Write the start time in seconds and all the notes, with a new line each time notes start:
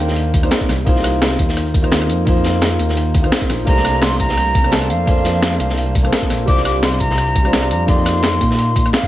Already playing: A#3 D4 D#4 C5 G5
0.00 D#2
0.08 snare
0.16 closed hi-hat
0.34 kick, closed hi-hat, tambourine
0.42 A#3 D4 D#4 C5, cross-stick, tambourine
0.51 snare, closed hi-hat
0.60 kick, snare, tambourine
0.69 C2, cross-stick, snare, closed hi-hat, tambourine
0.78 closed hi-hat
0.85 C2 A#3 D#4 F4, kick, closed hi-hat
0.89 C5
0.96 snare
1.03 cross-stick, snare, closed hi-hat, tambourine
1.13 closed hi-hat
1.22 snare, closed hi-hat
1.31 snare
1.38 D#2, kick, closed hi-hat, tambourine
1.49 snare
1.57 cross-stick, closed hi-hat
1.66 closed hi-hat
1.74 kick, closed hi-hat, tambourine
1.82 A#3 D#4 F4 C5, cross-stick, tambourine
1.92 snare, closed hi-hat
2.02 cross-stick, tambourine
2.09 F2, closed hi-hat, tambourine
2.25 A#3 D#4 F4 C5, kick, closed hi-hat
2.37 closed hi-hat
2.44 snare, closed hi-hat, tambourine
2.62 snare, closed hi-hat
2.79 D#2, closed hi-hat, tambourine
2.89 snare
2.97 closed hi-hat
3.14 kick, closed hi-hat, tambourine
3.22 A#3 D#4 F4, cross-stick, tambourine
3.26 C5
3.32 snare, closed hi-hat
3.41 kick, snare, tambourine
3.49 A#1, cross-stick, snare, closed hi-hat, tambourine
3.59 closed hi-hat
3.65 C2 A3 A#3 D4 C5 A#5, kick, closed hi-hat
3.77 snare
3.85 cross-stick, snare, closed hi-hat, tambourine
3.94 closed hi-hat
4.02 C6, snare, closed hi-hat
4.12 snare
4.20 C2 A#5, kick, closed hi-hat, tambourine
4.29 snare
4.37 cross-stick, closed hi-hat
4.46 closed hi-hat
4.55 kick, closed hi-hat, tambourine
4.63 A#3 D4 A4 C5, cross-stick, tambourine
4.72 A5, snare, closed hi-hat
4.82 cross-stick, tambourine
4.90 F2 F5, closed hi-hat, tambourine
5.06 A#3 D4 A4, kick, closed hi-hat
5.10 C5
5.18 closed hi-hat
5.25 snare, closed hi-hat, tambourine
5.42 snare, closed hi-hat
5.60 C2, closed hi-hat, tambourine
5.69 snare
5.78 closed hi-hat
5.95 kick, closed hi-hat, tambourine
6.02 A#3 D4 A4 C5, cross-stick, tambourine
6.13 snare, closed hi-hat
6.22 kick, snare, tambourine
6.30 A#1, cross-stick, snare, closed hi-hat, tambourine
6.40 closed hi-hat
6.46 C2 G3 D4 F4 C5 D6, kick, closed hi-hat
6.57 snare
6.65 D6, cross-stick, snare, closed hi-hat, tambourine
6.76 closed hi-hat
6.83 C6, snare, closed hi-hat
6.92 snare
7.00 C2 A#5, kick, closed hi-hat, tambourine
7.11 snare
7.18 cross-stick, closed hi-hat
7.27 closed hi-hat
7.35 kick, closed hi-hat, tambourine
7.43 G3 D4 F4 C5, cross-stick, tambourine
7.53 snare, closed hi-hat
7.63 cross-stick, tambourine
7.70 F2 A#5, closed hi-hat, tambourine
7.86 A#3 D#4 G4 D5 C6, kick, closed hi-hat
7.98 closed hi-hat
8.05 cross-stick, snare, closed hi-hat, tambourine
8.23 snare, closed hi-hat
8.41 A#2, kick, closed hi-hat, tambourine
8.51 snare
8.59 closed hi-hat
8.76 kick, closed hi-hat, tambourine
8.86 cross-stick, tambourine
8.93 F5, snare, closed hi-hat
9.03 kick, tambourine